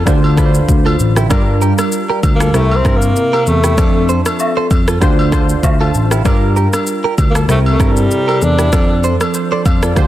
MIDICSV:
0, 0, Header, 1, 6, 480
1, 0, Start_track
1, 0, Tempo, 618557
1, 1013, Time_signature, 4, 2, 24, 8
1, 7816, End_track
2, 0, Start_track
2, 0, Title_t, "Clean electric guitar"
2, 0, Program_c, 0, 27
2, 53, Note_on_c, 0, 67, 79
2, 59, Note_on_c, 0, 62, 64
2, 139, Note_off_c, 0, 67, 0
2, 143, Note_off_c, 0, 62, 0
2, 293, Note_on_c, 0, 69, 78
2, 300, Note_on_c, 0, 65, 61
2, 379, Note_off_c, 0, 69, 0
2, 384, Note_off_c, 0, 65, 0
2, 665, Note_on_c, 0, 69, 79
2, 671, Note_on_c, 0, 65, 59
2, 736, Note_off_c, 0, 69, 0
2, 740, Note_off_c, 0, 65, 0
2, 906, Note_on_c, 0, 67, 88
2, 912, Note_on_c, 0, 64, 67
2, 976, Note_off_c, 0, 67, 0
2, 980, Note_off_c, 0, 64, 0
2, 1014, Note_on_c, 0, 74, 113
2, 1021, Note_on_c, 0, 70, 88
2, 1100, Note_off_c, 0, 74, 0
2, 1104, Note_off_c, 0, 70, 0
2, 1255, Note_on_c, 0, 70, 77
2, 1261, Note_on_c, 0, 67, 59
2, 1340, Note_off_c, 0, 70, 0
2, 1344, Note_off_c, 0, 67, 0
2, 1626, Note_on_c, 0, 70, 80
2, 1632, Note_on_c, 0, 67, 64
2, 1696, Note_off_c, 0, 70, 0
2, 1700, Note_off_c, 0, 67, 0
2, 1867, Note_on_c, 0, 69, 76
2, 1873, Note_on_c, 0, 65, 57
2, 1937, Note_off_c, 0, 69, 0
2, 1941, Note_off_c, 0, 65, 0
2, 1974, Note_on_c, 0, 67, 82
2, 1980, Note_on_c, 0, 64, 65
2, 2060, Note_off_c, 0, 67, 0
2, 2064, Note_off_c, 0, 64, 0
2, 2214, Note_on_c, 0, 70, 79
2, 2220, Note_on_c, 0, 67, 62
2, 2300, Note_off_c, 0, 70, 0
2, 2304, Note_off_c, 0, 67, 0
2, 2586, Note_on_c, 0, 70, 74
2, 2592, Note_on_c, 0, 67, 58
2, 2656, Note_off_c, 0, 70, 0
2, 2660, Note_off_c, 0, 67, 0
2, 2826, Note_on_c, 0, 67, 83
2, 2832, Note_on_c, 0, 64, 67
2, 2896, Note_off_c, 0, 67, 0
2, 2900, Note_off_c, 0, 64, 0
2, 2934, Note_on_c, 0, 74, 107
2, 2940, Note_on_c, 0, 69, 83
2, 3020, Note_off_c, 0, 74, 0
2, 3024, Note_off_c, 0, 69, 0
2, 3174, Note_on_c, 0, 72, 75
2, 3180, Note_on_c, 0, 69, 58
2, 3259, Note_off_c, 0, 72, 0
2, 3264, Note_off_c, 0, 69, 0
2, 3545, Note_on_c, 0, 72, 80
2, 3552, Note_on_c, 0, 69, 61
2, 3616, Note_off_c, 0, 72, 0
2, 3620, Note_off_c, 0, 69, 0
2, 3786, Note_on_c, 0, 69, 72
2, 3791, Note_on_c, 0, 65, 54
2, 3856, Note_off_c, 0, 69, 0
2, 3860, Note_off_c, 0, 65, 0
2, 3894, Note_on_c, 0, 67, 84
2, 3900, Note_on_c, 0, 62, 63
2, 3980, Note_off_c, 0, 67, 0
2, 3984, Note_off_c, 0, 62, 0
2, 4133, Note_on_c, 0, 69, 76
2, 4140, Note_on_c, 0, 65, 61
2, 4219, Note_off_c, 0, 69, 0
2, 4224, Note_off_c, 0, 65, 0
2, 4505, Note_on_c, 0, 69, 75
2, 4511, Note_on_c, 0, 65, 60
2, 4575, Note_off_c, 0, 69, 0
2, 4579, Note_off_c, 0, 65, 0
2, 4745, Note_on_c, 0, 67, 84
2, 4752, Note_on_c, 0, 64, 66
2, 4816, Note_off_c, 0, 67, 0
2, 4820, Note_off_c, 0, 64, 0
2, 4854, Note_on_c, 0, 74, 105
2, 4860, Note_on_c, 0, 70, 83
2, 4940, Note_off_c, 0, 74, 0
2, 4944, Note_off_c, 0, 70, 0
2, 5094, Note_on_c, 0, 70, 77
2, 5100, Note_on_c, 0, 67, 59
2, 5179, Note_off_c, 0, 70, 0
2, 5184, Note_off_c, 0, 67, 0
2, 5465, Note_on_c, 0, 70, 76
2, 5472, Note_on_c, 0, 67, 60
2, 5536, Note_off_c, 0, 70, 0
2, 5540, Note_off_c, 0, 67, 0
2, 5706, Note_on_c, 0, 69, 71
2, 5712, Note_on_c, 0, 65, 56
2, 5776, Note_off_c, 0, 69, 0
2, 5780, Note_off_c, 0, 65, 0
2, 5814, Note_on_c, 0, 67, 79
2, 5820, Note_on_c, 0, 64, 64
2, 5900, Note_off_c, 0, 67, 0
2, 5904, Note_off_c, 0, 64, 0
2, 6053, Note_on_c, 0, 70, 81
2, 6059, Note_on_c, 0, 67, 61
2, 6139, Note_off_c, 0, 70, 0
2, 6143, Note_off_c, 0, 67, 0
2, 6425, Note_on_c, 0, 70, 77
2, 6431, Note_on_c, 0, 67, 59
2, 6495, Note_off_c, 0, 70, 0
2, 6499, Note_off_c, 0, 67, 0
2, 6665, Note_on_c, 0, 67, 81
2, 6671, Note_on_c, 0, 64, 66
2, 6735, Note_off_c, 0, 67, 0
2, 6740, Note_off_c, 0, 64, 0
2, 6774, Note_on_c, 0, 74, 111
2, 6779, Note_on_c, 0, 69, 88
2, 6860, Note_off_c, 0, 74, 0
2, 6863, Note_off_c, 0, 69, 0
2, 7015, Note_on_c, 0, 72, 75
2, 7021, Note_on_c, 0, 69, 59
2, 7100, Note_off_c, 0, 72, 0
2, 7105, Note_off_c, 0, 69, 0
2, 7387, Note_on_c, 0, 72, 83
2, 7393, Note_on_c, 0, 69, 61
2, 7457, Note_off_c, 0, 72, 0
2, 7461, Note_off_c, 0, 69, 0
2, 7625, Note_on_c, 0, 69, 71
2, 7631, Note_on_c, 0, 65, 57
2, 7695, Note_off_c, 0, 69, 0
2, 7700, Note_off_c, 0, 65, 0
2, 7734, Note_on_c, 0, 67, 84
2, 7740, Note_on_c, 0, 62, 63
2, 7816, Note_off_c, 0, 62, 0
2, 7816, Note_off_c, 0, 67, 0
2, 7816, End_track
3, 0, Start_track
3, 0, Title_t, "Synth keys"
3, 0, Program_c, 1, 88
3, 0, Control_c, 1, 64, 127
3, 42, Note_on_c, 1, 50, 93
3, 49, Note_on_c, 1, 62, 89
3, 56, Note_on_c, 1, 65, 87
3, 62, Control_c, 1, 64, 0
3, 62, Note_on_c, 1, 72, 101
3, 214, Control_c, 1, 64, 127
3, 260, Note_off_c, 1, 50, 0
3, 264, Note_off_c, 1, 62, 0
3, 267, Note_off_c, 1, 65, 0
3, 270, Note_off_c, 1, 72, 0
3, 282, Note_on_c, 1, 50, 89
3, 290, Note_on_c, 1, 62, 87
3, 296, Note_on_c, 1, 65, 83
3, 302, Note_on_c, 1, 71, 82
3, 353, Note_off_c, 1, 71, 0
3, 353, Note_on_c, 1, 72, 100
3, 926, Note_off_c, 1, 50, 0
3, 930, Note_off_c, 1, 62, 0
3, 933, Note_off_c, 1, 65, 0
3, 961, Note_off_c, 1, 72, 0
3, 1004, Note_on_c, 1, 55, 89
3, 1010, Note_on_c, 1, 62, 77
3, 1017, Note_on_c, 1, 65, 83
3, 1023, Note_on_c, 1, 70, 97
3, 1024, Control_c, 1, 64, 0
3, 1167, Control_c, 1, 64, 127
3, 1859, Note_off_c, 1, 55, 0
3, 1862, Note_off_c, 1, 62, 0
3, 1866, Note_off_c, 1, 65, 0
3, 1869, Note_off_c, 1, 70, 0
3, 1964, Note_on_c, 1, 48, 76
3, 1971, Note_on_c, 1, 60, 74
3, 1977, Note_on_c, 1, 64, 75
3, 1983, Note_on_c, 1, 70, 84
3, 1984, Control_c, 1, 64, 0
3, 2142, Control_c, 1, 64, 127
3, 2181, Note_off_c, 1, 48, 0
3, 2185, Note_off_c, 1, 60, 0
3, 2188, Note_off_c, 1, 64, 0
3, 2191, Note_off_c, 1, 70, 0
3, 2203, Note_on_c, 1, 48, 80
3, 2210, Note_on_c, 1, 60, 71
3, 2217, Note_on_c, 1, 64, 67
3, 2223, Note_on_c, 1, 70, 87
3, 2846, Note_off_c, 1, 48, 0
3, 2850, Note_off_c, 1, 60, 0
3, 2853, Note_off_c, 1, 64, 0
3, 2856, Note_off_c, 1, 70, 0
3, 2924, Note_on_c, 1, 53, 74
3, 2930, Note_on_c, 1, 60, 68
3, 2937, Note_on_c, 1, 62, 65
3, 2942, Control_c, 1, 64, 0
3, 2943, Note_on_c, 1, 69, 78
3, 3094, Control_c, 1, 64, 127
3, 3780, Note_off_c, 1, 53, 0
3, 3783, Note_off_c, 1, 60, 0
3, 3786, Note_off_c, 1, 62, 0
3, 3789, Note_off_c, 1, 69, 0
3, 3882, Note_on_c, 1, 50, 88
3, 3889, Note_on_c, 1, 62, 86
3, 3896, Note_on_c, 1, 65, 83
3, 3902, Note_on_c, 1, 72, 103
3, 3904, Control_c, 1, 64, 0
3, 4039, Control_c, 1, 64, 127
3, 4100, Note_off_c, 1, 50, 0
3, 4104, Note_off_c, 1, 62, 0
3, 4107, Note_off_c, 1, 65, 0
3, 4110, Note_off_c, 1, 72, 0
3, 4123, Note_on_c, 1, 50, 88
3, 4129, Note_on_c, 1, 62, 82
3, 4136, Note_on_c, 1, 65, 82
3, 4142, Note_on_c, 1, 72, 102
3, 4373, Note_on_c, 1, 77, 61
3, 4498, Note_off_c, 1, 77, 0
3, 4506, Note_on_c, 1, 81, 72
3, 4733, Note_off_c, 1, 81, 0
3, 4746, Note_on_c, 1, 77, 67
3, 4766, Note_off_c, 1, 50, 0
3, 4769, Note_off_c, 1, 62, 0
3, 4773, Note_off_c, 1, 65, 0
3, 4776, Note_off_c, 1, 72, 0
3, 4845, Note_on_c, 1, 55, 86
3, 4851, Note_on_c, 1, 62, 79
3, 4857, Note_on_c, 1, 65, 78
3, 4864, Note_on_c, 1, 70, 97
3, 4865, Control_c, 1, 64, 0
3, 4973, Note_off_c, 1, 77, 0
3, 5021, Control_c, 1, 64, 127
3, 5700, Note_off_c, 1, 55, 0
3, 5703, Note_off_c, 1, 62, 0
3, 5706, Note_off_c, 1, 65, 0
3, 5709, Note_off_c, 1, 70, 0
3, 5803, Note_on_c, 1, 48, 74
3, 5810, Note_on_c, 1, 60, 72
3, 5817, Note_on_c, 1, 64, 70
3, 5823, Control_c, 1, 64, 0
3, 5823, Note_on_c, 1, 70, 84
3, 5964, Control_c, 1, 64, 127
3, 6021, Note_off_c, 1, 48, 0
3, 6024, Note_off_c, 1, 60, 0
3, 6027, Note_off_c, 1, 64, 0
3, 6031, Note_off_c, 1, 70, 0
3, 6043, Note_on_c, 1, 48, 78
3, 6050, Note_on_c, 1, 60, 73
3, 6056, Note_on_c, 1, 64, 67
3, 6063, Note_on_c, 1, 69, 67
3, 6113, Note_off_c, 1, 69, 0
3, 6113, Note_on_c, 1, 70, 84
3, 6687, Note_off_c, 1, 48, 0
3, 6690, Note_off_c, 1, 60, 0
3, 6693, Note_off_c, 1, 64, 0
3, 6722, Note_off_c, 1, 70, 0
3, 6765, Note_on_c, 1, 53, 69
3, 6771, Note_on_c, 1, 60, 65
3, 6777, Note_on_c, 1, 62, 67
3, 6784, Control_c, 1, 64, 0
3, 6784, Note_on_c, 1, 69, 80
3, 6925, Control_c, 1, 64, 127
3, 7254, Note_on_c, 1, 72, 66
3, 7379, Note_off_c, 1, 72, 0
3, 7386, Note_on_c, 1, 74, 71
3, 7488, Note_off_c, 1, 74, 0
3, 7494, Note_on_c, 1, 77, 67
3, 7619, Note_off_c, 1, 77, 0
3, 7620, Note_off_c, 1, 53, 0
3, 7623, Note_off_c, 1, 60, 0
3, 7626, Note_off_c, 1, 62, 0
3, 7626, Note_on_c, 1, 74, 64
3, 7629, Note_off_c, 1, 69, 0
3, 7724, Note_on_c, 1, 50, 91
3, 7731, Note_on_c, 1, 62, 85
3, 7737, Note_on_c, 1, 65, 84
3, 7741, Control_c, 1, 64, 0
3, 7743, Note_on_c, 1, 72, 103
3, 7816, Note_off_c, 1, 50, 0
3, 7816, Note_off_c, 1, 62, 0
3, 7816, Note_off_c, 1, 65, 0
3, 7816, Note_off_c, 1, 72, 0
3, 7816, Note_off_c, 1, 74, 0
3, 7816, End_track
4, 0, Start_track
4, 0, Title_t, "Tenor saxophone"
4, 0, Program_c, 2, 66
4, 1824, Note_on_c, 2, 58, 96
4, 1983, Note_on_c, 2, 57, 94
4, 1995, Note_off_c, 2, 58, 0
4, 2141, Note_on_c, 2, 60, 96
4, 2153, Note_off_c, 2, 57, 0
4, 2302, Note_on_c, 2, 58, 103
4, 2314, Note_off_c, 2, 60, 0
4, 2702, Note_on_c, 2, 57, 91
4, 2713, Note_off_c, 2, 58, 0
4, 3177, Note_off_c, 2, 57, 0
4, 5665, Note_on_c, 2, 58, 86
4, 5734, Note_off_c, 2, 58, 0
4, 5823, Note_on_c, 2, 57, 92
4, 5893, Note_off_c, 2, 57, 0
4, 5985, Note_on_c, 2, 57, 84
4, 6145, Note_on_c, 2, 55, 95
4, 6157, Note_off_c, 2, 57, 0
4, 6544, Note_on_c, 2, 62, 102
4, 6555, Note_off_c, 2, 55, 0
4, 7018, Note_off_c, 2, 62, 0
4, 7816, End_track
5, 0, Start_track
5, 0, Title_t, "Tine electric piano"
5, 0, Program_c, 3, 4
5, 54, Note_on_c, 3, 38, 104
5, 456, Note_off_c, 3, 38, 0
5, 532, Note_on_c, 3, 38, 90
5, 734, Note_off_c, 3, 38, 0
5, 772, Note_on_c, 3, 33, 82
5, 974, Note_off_c, 3, 33, 0
5, 1013, Note_on_c, 3, 43, 106
5, 1325, Note_off_c, 3, 43, 0
5, 1733, Note_on_c, 3, 38, 97
5, 1934, Note_off_c, 3, 38, 0
5, 1973, Note_on_c, 3, 36, 106
5, 2174, Note_off_c, 3, 36, 0
5, 2210, Note_on_c, 3, 43, 98
5, 2413, Note_off_c, 3, 43, 0
5, 2693, Note_on_c, 3, 40, 88
5, 2894, Note_off_c, 3, 40, 0
5, 2933, Note_on_c, 3, 41, 103
5, 3245, Note_off_c, 3, 41, 0
5, 3653, Note_on_c, 3, 41, 86
5, 3854, Note_off_c, 3, 41, 0
5, 3894, Note_on_c, 3, 38, 98
5, 4296, Note_off_c, 3, 38, 0
5, 4371, Note_on_c, 3, 38, 93
5, 4573, Note_off_c, 3, 38, 0
5, 4613, Note_on_c, 3, 33, 83
5, 4814, Note_off_c, 3, 33, 0
5, 4853, Note_on_c, 3, 43, 106
5, 5165, Note_off_c, 3, 43, 0
5, 5572, Note_on_c, 3, 38, 96
5, 5774, Note_off_c, 3, 38, 0
5, 5813, Note_on_c, 3, 36, 103
5, 6014, Note_off_c, 3, 36, 0
5, 6051, Note_on_c, 3, 43, 91
5, 6253, Note_off_c, 3, 43, 0
5, 6533, Note_on_c, 3, 40, 90
5, 6734, Note_off_c, 3, 40, 0
5, 6773, Note_on_c, 3, 41, 108
5, 7085, Note_off_c, 3, 41, 0
5, 7493, Note_on_c, 3, 41, 88
5, 7694, Note_off_c, 3, 41, 0
5, 7734, Note_on_c, 3, 38, 103
5, 7816, Note_off_c, 3, 38, 0
5, 7816, End_track
6, 0, Start_track
6, 0, Title_t, "Drums"
6, 52, Note_on_c, 9, 37, 91
6, 54, Note_on_c, 9, 36, 95
6, 54, Note_on_c, 9, 82, 70
6, 130, Note_off_c, 9, 37, 0
6, 132, Note_off_c, 9, 36, 0
6, 132, Note_off_c, 9, 82, 0
6, 187, Note_on_c, 9, 67, 71
6, 265, Note_off_c, 9, 67, 0
6, 290, Note_on_c, 9, 36, 93
6, 294, Note_on_c, 9, 82, 51
6, 295, Note_on_c, 9, 37, 88
6, 368, Note_off_c, 9, 36, 0
6, 371, Note_off_c, 9, 82, 0
6, 372, Note_off_c, 9, 37, 0
6, 423, Note_on_c, 9, 82, 77
6, 500, Note_off_c, 9, 82, 0
6, 532, Note_on_c, 9, 36, 87
6, 534, Note_on_c, 9, 82, 73
6, 609, Note_off_c, 9, 36, 0
6, 611, Note_off_c, 9, 82, 0
6, 671, Note_on_c, 9, 67, 73
6, 749, Note_off_c, 9, 67, 0
6, 771, Note_on_c, 9, 82, 49
6, 849, Note_off_c, 9, 82, 0
6, 904, Note_on_c, 9, 37, 93
6, 906, Note_on_c, 9, 82, 82
6, 981, Note_off_c, 9, 37, 0
6, 983, Note_off_c, 9, 82, 0
6, 1013, Note_on_c, 9, 36, 120
6, 1013, Note_on_c, 9, 67, 78
6, 1013, Note_on_c, 9, 82, 83
6, 1014, Note_on_c, 9, 37, 96
6, 1090, Note_off_c, 9, 36, 0
6, 1090, Note_off_c, 9, 67, 0
6, 1090, Note_off_c, 9, 82, 0
6, 1091, Note_off_c, 9, 37, 0
6, 1253, Note_on_c, 9, 82, 52
6, 1331, Note_off_c, 9, 82, 0
6, 1384, Note_on_c, 9, 82, 74
6, 1386, Note_on_c, 9, 37, 92
6, 1387, Note_on_c, 9, 67, 77
6, 1461, Note_off_c, 9, 82, 0
6, 1463, Note_off_c, 9, 37, 0
6, 1465, Note_off_c, 9, 67, 0
6, 1490, Note_on_c, 9, 82, 80
6, 1568, Note_off_c, 9, 82, 0
6, 1733, Note_on_c, 9, 36, 89
6, 1733, Note_on_c, 9, 67, 77
6, 1733, Note_on_c, 9, 82, 51
6, 1810, Note_off_c, 9, 36, 0
6, 1811, Note_off_c, 9, 67, 0
6, 1811, Note_off_c, 9, 82, 0
6, 1866, Note_on_c, 9, 37, 105
6, 1866, Note_on_c, 9, 82, 56
6, 1943, Note_off_c, 9, 37, 0
6, 1944, Note_off_c, 9, 82, 0
6, 1971, Note_on_c, 9, 37, 88
6, 1974, Note_on_c, 9, 82, 74
6, 2049, Note_off_c, 9, 37, 0
6, 2051, Note_off_c, 9, 82, 0
6, 2107, Note_on_c, 9, 67, 74
6, 2184, Note_off_c, 9, 67, 0
6, 2210, Note_on_c, 9, 36, 91
6, 2214, Note_on_c, 9, 82, 49
6, 2215, Note_on_c, 9, 37, 84
6, 2288, Note_off_c, 9, 36, 0
6, 2291, Note_off_c, 9, 82, 0
6, 2292, Note_off_c, 9, 37, 0
6, 2342, Note_on_c, 9, 82, 74
6, 2420, Note_off_c, 9, 82, 0
6, 2453, Note_on_c, 9, 82, 73
6, 2531, Note_off_c, 9, 82, 0
6, 2591, Note_on_c, 9, 67, 74
6, 2668, Note_off_c, 9, 67, 0
6, 2690, Note_on_c, 9, 82, 50
6, 2768, Note_off_c, 9, 82, 0
6, 2823, Note_on_c, 9, 37, 89
6, 2825, Note_on_c, 9, 82, 78
6, 2900, Note_off_c, 9, 37, 0
6, 2902, Note_off_c, 9, 82, 0
6, 2933, Note_on_c, 9, 36, 127
6, 2933, Note_on_c, 9, 67, 80
6, 2933, Note_on_c, 9, 82, 84
6, 2934, Note_on_c, 9, 37, 93
6, 3010, Note_off_c, 9, 36, 0
6, 3010, Note_off_c, 9, 67, 0
6, 3010, Note_off_c, 9, 82, 0
6, 3011, Note_off_c, 9, 37, 0
6, 3174, Note_on_c, 9, 82, 51
6, 3251, Note_off_c, 9, 82, 0
6, 3303, Note_on_c, 9, 82, 80
6, 3305, Note_on_c, 9, 37, 86
6, 3308, Note_on_c, 9, 67, 77
6, 3381, Note_off_c, 9, 82, 0
6, 3383, Note_off_c, 9, 37, 0
6, 3386, Note_off_c, 9, 67, 0
6, 3409, Note_on_c, 9, 82, 82
6, 3415, Note_on_c, 9, 77, 69
6, 3487, Note_off_c, 9, 82, 0
6, 3493, Note_off_c, 9, 77, 0
6, 3653, Note_on_c, 9, 36, 89
6, 3653, Note_on_c, 9, 82, 55
6, 3654, Note_on_c, 9, 67, 76
6, 3731, Note_off_c, 9, 36, 0
6, 3731, Note_off_c, 9, 82, 0
6, 3732, Note_off_c, 9, 67, 0
6, 3785, Note_on_c, 9, 37, 105
6, 3786, Note_on_c, 9, 82, 55
6, 3863, Note_off_c, 9, 37, 0
6, 3864, Note_off_c, 9, 82, 0
6, 3892, Note_on_c, 9, 37, 89
6, 3894, Note_on_c, 9, 36, 91
6, 3894, Note_on_c, 9, 82, 72
6, 3970, Note_off_c, 9, 37, 0
6, 3972, Note_off_c, 9, 36, 0
6, 3972, Note_off_c, 9, 82, 0
6, 4028, Note_on_c, 9, 67, 74
6, 4106, Note_off_c, 9, 67, 0
6, 4131, Note_on_c, 9, 36, 88
6, 4134, Note_on_c, 9, 82, 52
6, 4135, Note_on_c, 9, 37, 85
6, 4208, Note_off_c, 9, 36, 0
6, 4211, Note_off_c, 9, 82, 0
6, 4212, Note_off_c, 9, 37, 0
6, 4262, Note_on_c, 9, 82, 76
6, 4340, Note_off_c, 9, 82, 0
6, 4371, Note_on_c, 9, 36, 89
6, 4373, Note_on_c, 9, 82, 76
6, 4379, Note_on_c, 9, 77, 78
6, 4449, Note_off_c, 9, 36, 0
6, 4451, Note_off_c, 9, 82, 0
6, 4456, Note_off_c, 9, 77, 0
6, 4511, Note_on_c, 9, 67, 72
6, 4588, Note_off_c, 9, 67, 0
6, 4611, Note_on_c, 9, 82, 50
6, 4689, Note_off_c, 9, 82, 0
6, 4743, Note_on_c, 9, 37, 90
6, 4745, Note_on_c, 9, 82, 82
6, 4821, Note_off_c, 9, 37, 0
6, 4823, Note_off_c, 9, 82, 0
6, 4852, Note_on_c, 9, 82, 85
6, 4853, Note_on_c, 9, 36, 124
6, 4853, Note_on_c, 9, 67, 80
6, 4854, Note_on_c, 9, 37, 96
6, 4930, Note_off_c, 9, 67, 0
6, 4930, Note_off_c, 9, 82, 0
6, 4931, Note_off_c, 9, 36, 0
6, 4931, Note_off_c, 9, 37, 0
6, 5093, Note_on_c, 9, 82, 51
6, 5171, Note_off_c, 9, 82, 0
6, 5224, Note_on_c, 9, 82, 75
6, 5226, Note_on_c, 9, 37, 90
6, 5228, Note_on_c, 9, 67, 76
6, 5301, Note_off_c, 9, 82, 0
6, 5303, Note_off_c, 9, 37, 0
6, 5305, Note_off_c, 9, 67, 0
6, 5329, Note_on_c, 9, 82, 79
6, 5407, Note_off_c, 9, 82, 0
6, 5573, Note_on_c, 9, 36, 90
6, 5573, Note_on_c, 9, 82, 55
6, 5574, Note_on_c, 9, 67, 77
6, 5650, Note_off_c, 9, 36, 0
6, 5650, Note_off_c, 9, 82, 0
6, 5651, Note_off_c, 9, 67, 0
6, 5705, Note_on_c, 9, 37, 107
6, 5706, Note_on_c, 9, 82, 58
6, 5783, Note_off_c, 9, 37, 0
6, 5783, Note_off_c, 9, 82, 0
6, 5811, Note_on_c, 9, 37, 89
6, 5813, Note_on_c, 9, 82, 69
6, 5889, Note_off_c, 9, 37, 0
6, 5891, Note_off_c, 9, 82, 0
6, 5946, Note_on_c, 9, 67, 75
6, 6024, Note_off_c, 9, 67, 0
6, 6050, Note_on_c, 9, 36, 93
6, 6053, Note_on_c, 9, 82, 53
6, 6054, Note_on_c, 9, 37, 83
6, 6128, Note_off_c, 9, 36, 0
6, 6131, Note_off_c, 9, 82, 0
6, 6132, Note_off_c, 9, 37, 0
6, 6182, Note_on_c, 9, 82, 78
6, 6260, Note_off_c, 9, 82, 0
6, 6293, Note_on_c, 9, 82, 76
6, 6371, Note_off_c, 9, 82, 0
6, 6431, Note_on_c, 9, 67, 71
6, 6508, Note_off_c, 9, 67, 0
6, 6531, Note_on_c, 9, 82, 48
6, 6609, Note_off_c, 9, 82, 0
6, 6663, Note_on_c, 9, 37, 91
6, 6665, Note_on_c, 9, 82, 83
6, 6740, Note_off_c, 9, 37, 0
6, 6743, Note_off_c, 9, 82, 0
6, 6772, Note_on_c, 9, 36, 123
6, 6772, Note_on_c, 9, 67, 79
6, 6772, Note_on_c, 9, 82, 87
6, 6773, Note_on_c, 9, 37, 95
6, 6849, Note_off_c, 9, 82, 0
6, 6850, Note_off_c, 9, 36, 0
6, 6850, Note_off_c, 9, 67, 0
6, 6851, Note_off_c, 9, 37, 0
6, 7013, Note_on_c, 9, 82, 50
6, 7091, Note_off_c, 9, 82, 0
6, 7144, Note_on_c, 9, 82, 77
6, 7145, Note_on_c, 9, 37, 88
6, 7147, Note_on_c, 9, 67, 75
6, 7221, Note_off_c, 9, 82, 0
6, 7223, Note_off_c, 9, 37, 0
6, 7225, Note_off_c, 9, 67, 0
6, 7249, Note_on_c, 9, 82, 80
6, 7327, Note_off_c, 9, 82, 0
6, 7493, Note_on_c, 9, 36, 87
6, 7493, Note_on_c, 9, 82, 52
6, 7494, Note_on_c, 9, 67, 74
6, 7570, Note_off_c, 9, 36, 0
6, 7570, Note_off_c, 9, 82, 0
6, 7572, Note_off_c, 9, 67, 0
6, 7626, Note_on_c, 9, 37, 106
6, 7626, Note_on_c, 9, 82, 56
6, 7703, Note_off_c, 9, 37, 0
6, 7704, Note_off_c, 9, 82, 0
6, 7732, Note_on_c, 9, 37, 91
6, 7734, Note_on_c, 9, 36, 93
6, 7734, Note_on_c, 9, 82, 73
6, 7810, Note_off_c, 9, 37, 0
6, 7811, Note_off_c, 9, 36, 0
6, 7812, Note_off_c, 9, 82, 0
6, 7816, End_track
0, 0, End_of_file